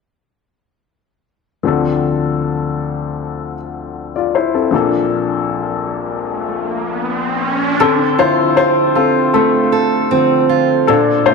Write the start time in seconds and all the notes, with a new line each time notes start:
1.63 D2 D3 F3 C4 D4
1.67 A4
4.16 F4 D5
4.35 E4 C5
4.54 C4 A4
4.71 A#1 A#2 F3 A#3 D4, riser
4.75 A4
7.80 D3 C4 A4
8.19 D3 F3 C4 E4 F4 C5
8.57 C4 F4 C5
8.95 C4 F4 A4
9.34 A3 C4 A4
9.72 A4
10.11 D3 F3 C4
10.49 F4
10.87 A#2 D4 A4
11.26 A#2 D3 A3 E4 F4 C5